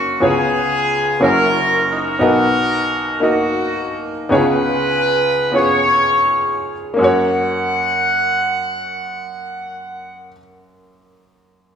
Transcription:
Already playing: upright piano F#1 F#2 F#3 A#3 C#4 F4 F#4 C#5 F5, horn section A#3 C#4 F#4
0.20 upright piano C#2 C#3 B3 C#4 F4 G#4 C#5, horn section B3 F4 G#4
1.20 upright piano F#1 F#2 A#3 C#4 E4 F#4 C#5, horn section C#4 E4 A#4
1.89 horn section D#4 F#4 A#4
2.19 upright piano B1 B2 B3 D#4 F#4 A#4 D#5
3.20 upright piano A#3 D#4 F#4 A#4 D#5, horn section A#3 D#4 F#4
4.29 upright piano C#2 C#3 B3 C#4 D#4 G#4 C#5, horn section F4 G#4 B4
4.37 upright piano F4
5.52 upright piano B3 C#4 F4 G#4 C#5, horn section F4 G#4 C#5
6.94 upright piano A#3 C#4
6.99 upright piano F#2 F#4, horn section F#5
7.04 upright piano C#5

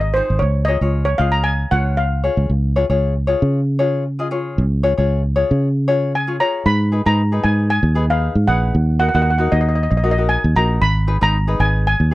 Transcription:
Already playing: fingered electric bass G#1
0.01 steel pan D#5
0.14 ukulele D#4 G#4 C5, steel pan C5
0.30 fingered electric bass G#1
0.39 fingered electric bass C#2, steel pan C#5
0.65 ukulele C#5, steel pan D#5
0.69 ukulele F4 G#4
0.81 fingered electric bass C#2, ukulele F4 G#4 C#5
1.05 steel pan C#5
1.18 fingered electric bass C#2, ukulele F4 G#4 D#5, steel pan F5
1.32 steel pan A#5
1.44 steel pan G#5
1.71 fingered electric bass C#2, ukulele F4 G#4 C#5, steel pan F#5
1.97 steel pan F5
2.24 ukulele F4 G#4 C#5
2.37 fingered electric bass C#2
2.50 fingered electric bass C#2
2.76 ukulele F4 G#4 C#5
2.90 fingered electric bass C#2, ukulele F4 G#4 C#5
3.27 ukulele F4 G#4 C#5
3.42 fingered electric bass C#3
3.79 ukulele F4 G#4 C#5
4.19 ukulele F4 G#4 D#5
4.31 ukulele F4 G#4 C#5
4.58 fingered electric bass C#2
4.83 ukulele F4 G#4 C#5
4.97 fingered electric bass C#2, ukulele F4 G#4 C#5
5.36 ukulele F4 G#4 C#5
5.51 fingered electric bass C#3
5.88 ukulele F4 G#4 C#5
6.15 steel pan G#5
6.27 ukulele F4 G#4 C#5
6.40 ukulele F4 G#4 C#5, steel pan A#5
6.66 fingered electric bass G#2, steel pan B5
6.92 ukulele D#4 G#4 B4
7.06 fingered electric bass G#2, ukulele D#4 G#4 B4, steel pan A#5
7.32 ukulele D#4 G#4 B4
7.44 fingered electric bass G#2, steel pan G#5
7.70 steel pan G#5
7.83 fingered electric bass D#2
7.95 ukulele D#4 G#4 B4
8.10 ukulele D#4 G#4 B4, steel pan F5
8.35 fingered electric bass G#2
8.48 fingered electric bass A#1, ukulele D#4 G#4 B4, steel pan F#5
8.75 fingered electric bass D#2
8.99 ukulele D#4 F#4 A#4, steel pan F#5
9.09 steel pan F#5
9.14 fingered electric bass D#2, ukulele D#4 F#4 A#4, steel pan F#5
9.22 steel pan F#5
9.30 steel pan F#5
9.38 ukulele D#4 F#4 A#4, steel pan F#5
9.52 fingered electric bass D#2, steel pan D#5
9.61 steel pan D#5
9.69 steel pan D#5
9.75 steel pan D#5
9.83 steel pan D#5
9.91 fingered electric bass A#1, steel pan D#5
9.97 steel pan D#5
10.04 ukulele D#4 F#4 A#4, steel pan D#5
10.11 steel pan D#5
10.17 ukulele D#4 F#4 A#4
10.29 steel pan G#5
10.44 fingered electric bass D#2
10.56 fingered electric bass A#1, ukulele D#4 F#4 A#4, steel pan A#5
10.82 fingered electric bass G#1, steel pan B5
11.07 ukulele D#4 G#4 B4
11.21 fingered electric bass G#1, ukulele D#4 G#4 B4, steel pan A#5
11.47 ukulele D#4 G#4 B4
11.60 fingered electric bass G#1, steel pan G#5
11.87 steel pan G#5
12.00 fingered electric bass D#2

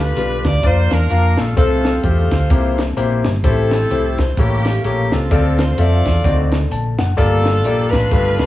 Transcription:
Already playing: fingered electric bass D2, grand piano D3
0.00 saxophone section F4 G4 B4
0.17 fingered electric bass B1, grand piano G3 D4 F4 B4, closed hi-hat
0.44 fingered electric bass D2, saxophone section D5, kick, snare, closed hi-hat
0.63 fingered electric bass F2, grand piano A#3 D4 F4 D5, saxophone section F4 C5, kick, closed hi-hat
0.91 fingered electric bass E2, saxophone section D4 F4 A#4, snare, closed hi-hat
1.10 fingered electric bass F2, grand piano A#3 D4 F4 F5, closed hi-hat
1.37 fingered electric bass A#1, saxophone section A4, snare, closed hi-hat
1.56 fingered electric bass C2, grand piano C3 A3 C4 F4 C5, saxophone section C4 F4 A4, kick, closed hi-hat
1.85 snare, closed hi-hat
2.03 fingered electric bass E2, grand piano A3 C4 F4 G4, saxophone section F4 A4 C5, kick, closed hi-hat
2.31 fingered electric bass D2, kick, snare, closed hi-hat
2.50 fingered electric bass C2, grand piano C3 A#3 E4 G4 C5, kick, closed hi-hat
2.78 snare, closed hi-hat
2.97 fingered electric bass A#1, grand piano A#3 E4 G4 C5, closed hi-hat
3.25 fingered electric bass G1, snare, closed hi-hat
3.44 fingered electric bass A1, grand piano A2 A3 E4 G4 C5, saxophone section C4 E4 A4, kick, closed hi-hat
3.71 snare, closed hi-hat
3.91 fingered electric bass C2, grand piano A3 E4 G4 C5, closed hi-hat
4.18 saxophone section C5, kick, snare, closed hi-hat
4.37 fingered electric bass A1, grand piano A2 A#3 G4 A4 C#5, saxophone section A#3 C#4 G4, kick, closed hi-hat
4.65 snare, closed hi-hat
4.84 fingered electric bass A#1, grand piano A#3 G4 A4 C#5, saxophone section G4, closed hi-hat
5.12 fingered electric bass C#2, saxophone section C4 F4 A4, snare, closed hi-hat
5.31 fingered electric bass D2, grand piano D3 C4 F4 A4 D5, kick, closed hi-hat
5.59 saxophone section C5, snare, closed hi-hat
5.78 fingered electric bass F2, grand piano C4 F4 A4 E5, saxophone section F4 A4 D5, closed hi-hat
6.05 fingered electric bass E2, kick, snare, closed hi-hat
6.24 fingered electric bass D2, grand piano D3 C4 D#4 F#4 D5, kick, closed hi-hat
6.52 snare, closed hi-hat
6.71 fingered electric bass A#1, grand piano A5, closed hi-hat
6.98 fingered electric bass F#1, grand piano F#5, snare, closed hi-hat
7.17 fingered electric bass G1, grand piano G2 A#3 F4 G4 D5, saxophone section D4 F4 A4, kick, closed hi-hat
7.46 snare, closed hi-hat
7.64 fingered electric bass A#1, grand piano A#3 F4 G4 D5, closed hi-hat
7.91 fingered electric bass A1, saxophone section D4 F4 B4, kick, snare, closed hi-hat
8.11 fingered electric bass G1, grand piano G2 A3 F4 G4 B4, kick, closed hi-hat
8.39 fingered electric bass D2, snare, closed hi-hat

